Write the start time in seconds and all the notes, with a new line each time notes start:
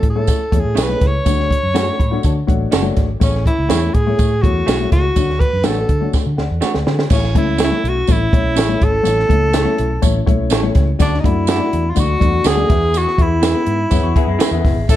0.03 A2, kick, closed hi-hat
0.10 A4
0.15 A3 E4 G#4 C#5
0.27 kick, closed hi-hat, tambourine
0.52 E2 A3 E4 G#4 C#5, kick, closed hi-hat
0.60 G#4
0.64 A2
0.75 B1 C#4 E4 G#4 C#5, snare, closed hi-hat, tambourine
0.83 B4
0.89 A3 E4 G#4 C#5
1.01 C#2, kick, snare, closed hi-hat
1.07 C#5
1.25 D2 D3 A3 D4 F#4 C#5, kick, closed hi-hat, tambourine
1.40 snare
1.51 kick, closed hi-hat
1.63 F#2
1.74 A3 C#4 D4 F#4 A4 C#5, snare, closed hi-hat, tambourine
1.99 A2 B5, kick, closed hi-hat
2.11 A3 D4 F#4 C#5
2.23 D3 A5, kick, closed hi-hat, tambourine
2.47 A1 A3 D4 F#4 C#5 F#5, kick, closed hi-hat
2.71 F#1 C#4 F#4 A4 C#5 D5, snare, closed hi-hat, tambourine
2.82 A3 D4 F#4 C#5
2.97 G#1, kick, snare, closed hi-hat
3.20 A1 A2 A3 C#4 E4 G#4 C#5, kick, closed hi-hat, tambourine
3.35 snare
3.46 E4, kick, closed hi-hat
3.58 C#2
3.68 E2 A3 E4 G#4 C#5, snare, closed hi-hat, tambourine
3.94 A2 G#4, kick, closed hi-hat
4.07 A3 E4 G#4 C#5
4.19 A2, kick, closed hi-hat, tambourine
4.42 E2 A3 E4 F#4 G#4 C#5, kick, closed hi-hat
4.66 B1 A3 E4 G#4 C#5, snare, closed hi-hat, tambourine
4.80 A3 E4 G#4 C#5
4.92 C#2 F#4, kick, snare, closed hi-hat
5.16 D2 D3 A3 D4 F#4 C#5, kick, closed hi-hat, tambourine
5.30 snare
5.40 B4, kick, closed hi-hat
5.53 F#2
5.64 A1 A3 D4 F#4 A4 C#5, snare, closed hi-hat, tambourine
5.89 D3, kick, closed hi-hat
6.01 A3 D4 F#4 C#5
6.13 kick, snare, tambourine
6.26 D3
6.37 D2 D5 F#5, snare
6.51 E2
6.61 A3 D4 F#4 B4 C#5 D5, muted fingered electric bass stroke, snare, tambourine
6.74 D2, snare
6.86 D3 F#4 A4, snare
6.99 snare
7.10 A1 A2 A3 C#4 E4 C#5, kick, crash, tambourine
7.24 snare
7.35 C#2 A3 C#4 E4 C#5, kick, closed hi-hat
7.58 C#4 E4 A4 C#5, snare, closed hi-hat, tambourine
7.64 E4
7.72 A3 C#4 E4 C#5
7.84 B1, closed hi-hat
7.89 F#4
8.07 A1 A3 C#4 E4 C#5, kick, closed hi-hat, tambourine
8.12 E4
8.33 B1 A3 C#4 E4 C#5, kick, closed hi-hat
8.56 A1 C#4 E4 A4 C#5, snare, closed hi-hat, tambourine
8.69 A3 C#4 E4 C#5
8.81 G#1 A4, kick, closed hi-hat
9.03 A1 A2 A3 C#4 E4 C#5, closed hi-hat, tambourine
9.19 snare
9.28 C#2 A3 C#4 E4 C#5, kick, closed hi-hat
9.53 C#4 E4 A4 C#5, snare, closed hi-hat, tambourine
9.64 A3 C#4 E4 C#5
9.78 B1, closed hi-hat
10.02 A1 A3 C#4 E4 C#5, kick, closed hi-hat, tambourine
10.26 B1 A3 C#4 E4 C#5, kick, closed hi-hat
10.50 A1 C#4 E4 A4 C#5, snare, closed hi-hat, tambourine
10.63 A3 C#4 E4 C#5
10.75 C#2, kick, snare, closed hi-hat
10.99 D2 D3 A3 D4 F#4 D5, kick, closed hi-hat, tambourine
11.14 snare
11.20 A3 D4 D#4 F#4 D5
11.24 F#2 E4, kick, closed hi-hat
11.47 D4 E4 F#4 A4 D5, snare, closed hi-hat, tambourine
11.58 A3 D4 F#4 D5
11.73 E2, closed hi-hat
11.90 F4
11.95 D2 A3 D4 F#4 D5, kick, closed hi-hat, tambourine
11.99 F#4
12.20 E2 A3 D4 F#4 D5, kick, closed hi-hat
12.44 D2 D4 F#4 G#4 A4 D5, snare, closed hi-hat, tambourine
12.56 A3 D4 F#4 D5
12.69 E2 E3 B3 E4 G#4 E5, kick, snare, closed hi-hat
12.94 F#4, closed hi-hat, tambourine
13.07 snare
13.18 E2 B3 E4 G#4 E5, kick, closed hi-hat
13.22 E4
13.42 E4 G#4 B4 E5, snare, closed hi-hat, tambourine
13.53 B3 E4 G#4 E5
13.66 G#2, closed hi-hat
13.90 F#2 B3 E4 G#4 C#5, kick, closed hi-hat, tambourine
14.03 E2 F#4
14.16 B3 E4 G#4 E5, kick, closed hi-hat
14.27 F#2 G#3 E4
14.39 E4 G#4 B4 E5, snare, closed hi-hat, tambourine
14.51 E2 B3 E4 G#4 E5
14.64 F#1, kick, snare, open hi-hat
14.77 G#1
14.89 A1 A2 C#4 E4 A4 E5, kick, closed hi-hat, tambourine